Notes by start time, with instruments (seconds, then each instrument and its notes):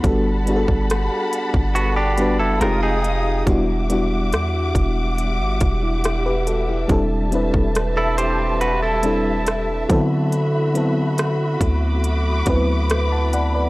0.03 808-style bass G1, fm electric piano G3 B3 D4 F#4 A4, string section G3 F#5 A5 B5, kick, closed hi-hat
0.46 fm electric piano G3 B3 D4 F#4 G#4, closed hi-hat
0.56 fm electric piano A4
0.68 808-style bass G1, kick
0.90 cross-stick, closed hi-hat
1.33 closed hi-hat
1.54 808-style bass G1, kick
1.75 clean electric guitar B3 F#4, closed hi-hat
1.96 clean electric guitar D4 G4
2.18 fm electric piano G3 B3 D4 F#4 B4, closed hi-hat
2.39 808-style bass F#1, clean electric guitar E4 A4
2.61 808-style bass F1, fm electric piano G#3 C4 D#4 F4 G4, string section G#3 F5 G5 D#6, clean electric guitar F4 A#4, cross-stick, closed hi-hat
2.83 clean electric guitar D#4 G#4
3.04 closed hi-hat
3.46 808-style bass E1, fm electric piano G3 B3 D4 E4 F#4, string section G3 E5 F#5 D6, kick, closed hi-hat
3.89 fm electric piano G3 B3 D4 E4 F#4, closed hi-hat
4.32 808-style bass E2, cross-stick, closed hi-hat
4.75 808-style bass E1, kick, closed hi-hat
5.18 closed hi-hat
5.39 808-style bass G1
5.61 808-style bass E1, kick, closed hi-hat
5.83 fm electric piano E4
6.04 fm electric piano E4 G4, cross-stick, closed hi-hat
6.26 fm electric piano G4 B4
6.47 fm electric piano F#4 A4, closed hi-hat
6.69 fm electric piano E4 G4
6.88 808-style bass E1, fm electric piano G3 C4 D4 E4 A4, string section A5, kick, closed hi-hat
7.31 fm electric piano G3 C4 D4 E4 B4, closed hi-hat
7.54 808-style bass E1, kick
7.75 cross-stick, closed hi-hat
7.97 clean electric guitar E4 A4
8.18 clean electric guitar G4 C5, closed hi-hat
8.61 clean electric guitar F#4 B4, closed hi-hat
8.83 clean electric guitar E4 A4
9.03 fm electric piano G3 C4 D4 E4 A4, closed hi-hat
9.47 cross-stick, closed hi-hat
9.89 808-style bass D3, fm electric piano F#3 B3 C4 E4 A4, string section F#4 B5, kick, closed hi-hat
10.32 closed hi-hat
10.74 fm electric piano F#3 B3 C4 E4 A4, closed hi-hat
11.18 cross-stick, closed hi-hat
11.61 808-style bass D2, string section D6, kick, closed hi-hat
12.04 closed hi-hat
12.46 808-style bass D2, fm electric piano F#3 B3 C4 E4 B4, kick, closed hi-hat
12.90 cross-stick, closed hi-hat
13.12 fm electric piano F#5 A5
13.33 fm electric piano D5 F#5, closed hi-hat
13.55 fm electric piano B4 D5